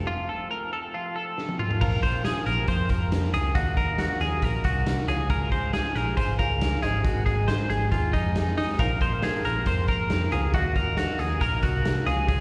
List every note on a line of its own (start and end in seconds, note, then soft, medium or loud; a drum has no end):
0.06 0.28 F2 medium
0.06 0.28 C3 medium
0.06 0.29 F3 medium
0.06 0.29 A3 medium
0.06 0.28 C4 medium
0.06 0.29 F4 medium
0.06 0.27 F4 medium
0.28 0.48 F3 soft
0.28 0.49 A3 medium
0.28 0.50 C4 soft
0.28 0.50 F4 medium
0.28 0.50 A4 medium
0.49 0.72 F3 medium
0.49 0.72 A3 medium
0.49 0.71 C4 medium
0.49 0.70 F4 medium
0.49 0.72 A#4 medium
0.71 0.93 F3 soft
0.71 0.93 A3 soft
0.71 0.94 C4 medium
0.71 0.93 F4 medium
0.71 0.94 A4 medium
0.93 1.15 F2 medium
0.93 1.16 C3 medium
0.93 1.16 F3 medium
0.93 1.16 A3 medium
0.93 1.15 C4 medium
0.93 1.16 F4 medium
0.93 1.14 F4 medium
1.15 1.36 F3 soft
1.15 1.37 A3 soft
1.15 1.38 C4 soft
1.15 1.37 F4 medium
1.15 1.57 A4 medium
1.37 1.59 F3 medium
1.37 1.60 A3 medium
1.37 1.59 C4 medium
1.37 1.58 F4 medium
1.37 snare medium
1.49 high tom medium
1.59 1.79 F3 soft
1.59 1.81 A3 medium
1.59 1.81 C4 medium
1.59 1.81 F4 medium
1.59 mid tom medium
1.71 floor tom medium
1.80 2.33 A#1 loud
1.80 2.02 A#2 medium
1.80 2.03 F3 medium
1.80 2.03 A#3 loud
1.80 2.03 C4 medium
1.80 3.52 F4 medium
1.80 2.01 F4 loud
1.80 2.02 A#4 medium
1.80 3.52 A#4 medium
1.80 3.52 C5 medium
1.80 3.52 F5 medium
1.80 kick loud
1.80 crash loud
2.02 2.24 A#3 medium
2.02 2.25 C4 medium
2.02 2.24 F4 medium
2.02 2.24 C5 medium
2.02 kick medium
2.02 closed hi-hat medium
2.24 2.46 A#2 medium
2.24 2.46 F3 medium
2.24 2.47 A#3 loud
2.24 2.46 C4 medium
2.24 2.44 F4 medium
2.24 2.46 G#4 medium
2.24 snare loud
2.24 closed hi-hat loud
2.45 2.65 A#1 loud
2.45 2.66 A#3 medium
2.45 2.68 C4 medium
2.45 2.68 F4 medium
2.45 2.68 A#4 medium
2.45 closed hi-hat medium
2.66 2.87 F2 medium
2.66 2.89 F3 medium
2.66 2.90 A#3 medium
2.66 2.90 C4 medium
2.66 2.88 F4 medium
2.66 2.90 C5 medium
2.66 kick medium
2.66 closed hi-hat medium
2.89 3.27 F2 medium
2.89 3.11 A#3 soft
2.89 3.12 C4 medium
2.89 3.11 F4 medium
2.89 3.31 A#4 medium
2.89 kick medium
2.89 closed hi-hat medium
3.11 3.33 A#2 medium
3.11 3.33 F3 medium
3.11 3.34 A#3 medium
3.11 3.34 C4 medium
3.11 3.32 F4 medium
3.11 snare loud
3.11 closed hi-hat loud
3.33 3.52 C#2 medium
3.33 3.54 A#3 soft
3.33 3.56 C4 medium
3.33 3.55 F4 medium
3.33 3.56 G#4 medium
3.33 closed hi-hat medium
3.54 4.07 D#2 loud
3.54 3.77 D#3 medium
3.54 3.77 F#3 medium
3.54 3.77 A#3 medium
3.54 3.76 D#4 medium
3.54 3.75 F4 medium
3.54 5.05 F#4 medium
3.54 3.77 F#4 loud
3.54 5.05 A#4 medium
3.54 5.05 D#5 medium
3.54 5.05 F5 medium
3.54 kick loud
3.54 closed hi-hat loud
3.76 3.99 A#3 soft
3.76 3.99 D#4 medium
3.76 3.98 F4 medium
3.76 3.99 A#4 medium
3.76 kick medium
3.76 closed hi-hat medium
3.98 4.21 D#3 medium
3.98 4.21 F#3 medium
3.98 4.21 A#3 medium
3.98 4.21 D#4 loud
3.98 4.19 F4 medium
3.98 4.21 F#4 medium
3.98 snare loud
3.98 closed hi-hat loud
4.20 4.39 D#2 medium
4.20 4.42 A#3 soft
4.20 4.43 D#4 medium
4.20 4.42 F4 medium
4.20 4.43 G#4 medium
4.20 closed hi-hat medium
4.42 4.61 A#1 loud
4.42 4.64 F#3 medium
4.42 4.65 A#3 medium
4.42 4.65 D#4 medium
4.42 4.63 F4 medium
4.42 4.64 A#4 medium
4.42 kick medium
4.42 closed hi-hat medium
4.64 5.02 C2 loud
4.64 4.86 A#3 soft
4.64 4.87 D#4 medium
4.64 4.86 F4 medium
4.64 5.06 F#4 medium
4.64 kick medium
4.64 closed hi-hat medium
4.86 5.08 D#3 medium
4.86 5.08 F#3 medium
4.86 5.08 A#3 medium
4.86 5.09 D#4 medium
4.86 5.07 F4 medium
4.86 snare loud
4.86 closed hi-hat loud
5.07 5.82 C#2 loud
5.07 5.30 G#3 medium
5.07 6.36 F4 medium
5.07 5.30 F4 medium
5.07 5.30 G#4 medium
5.07 6.36 G#4 medium
5.07 5.30 G#4 medium
5.07 6.36 C#5 medium
5.07 6.36 F5 medium
5.07 closed hi-hat medium
5.29 5.51 C#3 medium
5.29 5.52 F3 loud
5.29 5.52 G#3 medium
5.29 5.51 F4 loud
5.29 5.50 G#4 medium
5.29 5.51 A#4 medium
5.29 kick loud
5.29 closed hi-hat medium
5.51 5.73 G#3 soft
5.51 5.73 F4 medium
5.51 5.73 G#4 medium
5.51 5.73 C5 medium
5.51 kick medium
5.51 closed hi-hat medium
5.73 5.95 C#3 medium
5.73 5.95 F3 medium
5.73 5.95 G#3 loud
5.73 5.95 F4 medium
5.73 5.95 G#4 medium
5.73 5.93 G#4 medium
5.73 snare loud
5.73 closed hi-hat loud
5.95 6.14 A#1 medium
5.95 6.16 G#3 soft
5.95 6.17 F4 medium
5.95 6.17 G#4 medium
5.95 6.17 A#4 medium
5.95 closed hi-hat medium
6.16 6.36 G#1 loud
6.16 6.39 F3 medium
6.16 6.39 G#3 medium
6.16 6.39 F4 medium
6.16 6.37 G#4 medium
6.16 6.38 C5 medium
6.16 kick medium
6.16 closed hi-hat loud
6.38 6.76 C#2 medium
6.38 6.61 G#3 soft
6.38 6.83 F4 medium
6.38 6.61 F4 medium
6.38 6.60 G#4 medium
6.38 6.81 G#4 medium
6.38 6.80 A#4 medium
6.38 6.83 C#5 medium
6.38 6.83 F5 medium
6.38 kick medium
6.38 closed hi-hat medium
6.60 6.82 C#3 medium
6.60 6.83 F3 medium
6.60 6.83 G#3 loud
6.60 6.83 F4 loud
6.60 6.81 G#4 loud
6.60 snare loud
6.60 closed hi-hat loud
6.83 7.01 G#1 loud
6.83 7.03 G#3 medium
6.83 7.04 C4 medium
6.83 8.75 D#4 medium
6.83 7.04 D#4 medium
6.83 7.04 G#4 medium
6.83 8.75 G#4 medium
6.83 8.75 C5 medium
6.83 8.76 D#5 medium
6.83 closed hi-hat medium
7.04 7.56 G#1 loud
7.04 7.26 G#2 medium
7.04 7.26 D#3 medium
7.04 7.26 G#3 medium
7.04 7.26 C4 medium
7.04 7.25 D#4 medium
7.04 7.25 F#4 loud
7.04 7.24 G#4 medium
7.04 kick loud
7.04 closed hi-hat loud
7.25 7.47 G#3 soft
7.25 7.47 C4 medium
7.25 7.48 D#4 medium
7.25 7.47 G#4 medium
7.25 7.48 G#4 medium
7.25 kick medium
7.25 closed hi-hat medium
7.47 7.69 G#2 medium
7.47 7.70 D#3 medium
7.47 7.70 G#3 medium
7.47 7.69 C4 medium
7.47 7.68 D#4 loud
7.47 7.67 G#4 loud
7.47 7.70 C5 medium
7.47 snare loud
7.47 closed hi-hat loud
7.68 7.88 G#1 loud
7.68 7.89 G#3 soft
7.68 7.91 C4 soft
7.68 7.92 D#4 medium
7.68 7.91 G#4 medium
7.68 closed hi-hat medium
7.91 8.10 D#2 loud
7.91 8.13 G#3 medium
7.91 8.14 C4 medium
7.91 8.13 D#4 medium
7.91 8.13 F4 medium
7.91 8.12 G#4 medium
7.91 kick medium
7.91 closed hi-hat medium
8.13 8.51 F2 medium
8.13 8.35 G#3 soft
8.13 8.35 C4 medium
8.13 8.54 D#4 medium
8.13 8.35 D#4 medium
8.13 8.35 G#4 medium
8.13 kick medium
8.13 closed hi-hat medium
8.35 8.57 G#2 medium
8.35 8.57 D#3 medium
8.35 8.57 G#3 medium
8.35 8.57 C4 medium
8.35 8.56 D#4 medium
8.35 8.55 G#4 medium
8.35 snare loud
8.35 closed hi-hat loud
8.56 8.79 G#3 medium
8.56 8.79 C4 medium
8.56 8.79 D#4 medium
8.56 8.79 G#4 medium
8.56 open hi-hat medium
8.78 9.31 A#1 medium
8.78 9.01 A#2 medium
8.78 9.01 F3 medium
8.78 9.01 A#3 medium
8.78 9.01 C4 medium
8.78 10.29 F4 medium
8.78 10.29 A#4 medium
8.78 9.01 A#4 medium
8.78 8.99 A#4 loud
8.78 10.29 C5 medium
8.78 10.29 F5 medium
8.78 kick loud
8.78 closed hi-hat medium
9.00 9.23 A#3 soft
9.00 9.23 C4 medium
9.00 9.22 A#4 medium
9.00 9.23 C5 medium
9.00 kick medium
9.00 closed hi-hat medium
9.22 9.45 A#2 medium
9.22 9.45 F3 medium
9.22 9.45 A#3 loud
9.22 9.44 C4 loud
9.22 9.45 G#4 medium
9.22 9.43 A#4 loud
9.22 snare loud
9.22 closed hi-hat loud
9.44 9.63 A#1 medium
9.44 9.65 A#3 soft
9.44 9.67 C4 medium
9.44 9.66 A#4 medium
9.44 9.67 A#4 medium
9.44 closed hi-hat medium
9.65 9.85 F2 medium
9.65 9.88 F3 medium
9.65 9.88 A#3 medium
9.65 9.88 C4 medium
9.65 9.86 A#4 medium
9.65 9.88 C5 medium
9.65 kick medium
9.65 closed hi-hat medium
9.87 10.26 F2 medium
9.87 10.10 A#3 soft
9.87 10.11 C4 medium
9.87 10.10 A#4 medium
9.87 10.30 A#4 medium
9.87 kick medium
9.87 closed hi-hat medium
10.10 10.32 A#2 medium
10.10 10.32 F3 medium
10.10 10.32 A#3 medium
10.10 10.33 C4 medium
10.10 10.31 A#4 loud
10.10 snare loud
10.10 closed hi-hat loud
10.32 10.51 C#2 medium
10.32 10.53 A#3 medium
10.32 10.55 C4 medium
10.32 10.54 F4 medium
10.32 10.54 G#4 medium
10.32 10.54 A#4 medium
10.32 10.53 A#4 medium
10.32 10.54 C5 medium
10.32 10.53 F5 medium
10.32 closed hi-hat medium
10.54 11.06 D#2 loud
10.54 10.76 D#3 medium
10.54 10.76 F#3 medium
10.54 10.76 A#3 medium
10.54 10.76 D#4 loud
10.54 10.73 F4 loud
10.54 12.04 F#4 medium
10.54 10.76 F#4 loud
10.54 12.04 A#4 medium
10.54 12.04 D#5 medium
10.54 12.04 F5 medium
10.54 kick loud
10.54 closed hi-hat medium
10.74 10.96 A#3 soft
10.74 10.96 D#4 soft
10.74 10.97 F4 medium
10.74 10.98 A#4 medium
10.74 kick medium
10.74 closed hi-hat medium
10.96 11.19 D#3 medium
10.96 11.19 F#3 medium
10.96 11.19 A#3 medium
10.96 11.19 D#4 medium
10.96 11.17 F4 medium
10.96 11.19 F#4 medium
10.96 snare loud
10.96 closed hi-hat loud
11.18 11.38 D#2 medium
11.18 11.41 A#3 soft
11.18 11.42 D#4 medium
11.18 11.41 F4 medium
11.18 11.41 G#4 medium
11.18 closed hi-hat medium
11.41 11.60 A#1 medium
11.41 11.63 F#3 medium
11.41 11.63 A#3 medium
11.41 11.63 D#4 medium
11.41 11.61 F4 medium
11.41 11.63 A#4 medium
11.41 kick medium
11.41 closed hi-hat medium
11.63 12.00 C2 loud
11.63 11.86 A#3 soft
11.63 11.86 D#4 medium
11.63 11.85 F4 medium
11.63 12.04 F#4 medium
11.63 kick medium
11.63 closed hi-hat medium
11.85 12.07 D#3 medium
11.85 12.07 F#3 medium
11.85 12.08 A#3 medium
11.85 12.08 D#4 medium
11.85 12.06 F4 medium
11.85 snare loud
11.85 closed hi-hat loud
12.06 12.40 C#2 medium
12.06 12.28 G#3 medium
12.06 12.40 F4 medium
12.06 12.28 F4 medium
12.06 12.27 G#4 medium
12.06 12.40 G#4 medium
12.06 12.29 G#4 medium
12.06 12.40 C#5 medium
12.06 12.40 F5 medium
12.06 closed hi-hat medium
12.28 12.40 C#3 medium
12.28 12.40 F3 medium
12.28 12.40 G#3 medium
12.28 12.40 F4 medium
12.28 12.40 G#4 medium
12.28 kick loud
12.28 closed hi-hat medium